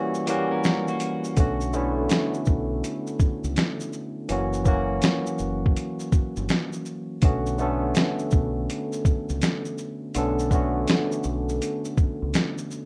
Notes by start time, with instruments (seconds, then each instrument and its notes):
Already playing: tine electric piano E3 G3 A#3 C#4 F#4
0.14 shaker
0.27 tine electric piano E3 G3 A#3 C#4 F#4, clean electric guitar A#3 G4, closed hi-hat, shaker
0.51 clean electric guitar C#4 A#4
0.64 finger snap, snare, shaker
0.88 clean electric guitar A#3 F#4, shaker
1.00 closed hi-hat, shaker
1.24 shaker
1.37 fingered electric bass B1, tine electric piano D3 A3 B3 C#4 F#4, kick, closed hi-hat, shaker
1.61 shaker
1.73 tine electric piano D3 A3 B3 C#4 E4, shaker
2.09 finger snap, snare, closed hi-hat, shaker
2.34 shaker
2.45 fingered electric bass B1, kick, shaker
2.84 closed hi-hat, shaker
3.07 shaker
3.20 kick, shaker
3.44 fingered electric bass C#2, shaker
3.56 finger snap, snare, closed hi-hat, shaker
3.80 shaker
3.93 shaker
4.29 fingered electric bass F#1, tine electric piano E3 F#3 A#3 C#4 F#4, closed hi-hat, shaker
4.53 shaker
4.65 tine electric piano E3 F#3 A#3 C#4 F#4, kick, shaker
5.02 finger snap, snare, closed hi-hat, shaker
5.26 shaker
5.38 fingered electric bass F#1, shaker
5.66 kick
5.76 closed hi-hat, shaker
5.99 shaker
6.12 kick, shaker
6.36 fingered electric bass G1, shaker
6.49 finger snap, snare, closed hi-hat, shaker
6.73 shaker
6.85 shaker
7.22 fingered electric bass B1, tine electric piano D3 A3 B3 C#4 F#4, kick, closed hi-hat, shaker
7.46 shaker
7.58 tine electric piano D3 A3 B3 C#4 A4, shaker
7.95 finger snap, snare, closed hi-hat, shaker
8.19 shaker
8.31 fingered electric bass B1, kick, shaker
8.70 closed hi-hat, shaker
8.92 shaker
9.05 kick, shaker
9.29 fingered electric bass C#2, shaker
9.42 finger snap, snare, closed hi-hat, shaker
9.65 shaker
9.78 shaker
10.15 fingered electric bass B1, tine electric piano D3 A3 B3 C#4 A4, closed hi-hat, shaker
10.39 shaker
10.51 tine electric piano D3 A3 B3 C#4 F#4, kick, shaker
10.88 finger snap, snare, closed hi-hat, shaker
11.12 shaker
11.23 fingered electric bass B1, shaker
11.49 shaker
11.62 closed hi-hat, shaker
11.85 shaker
11.97 kick, shaker
12.22 fingered electric bass C#2
12.34 finger snap, snare, closed hi-hat, shaker
12.58 shaker
12.71 shaker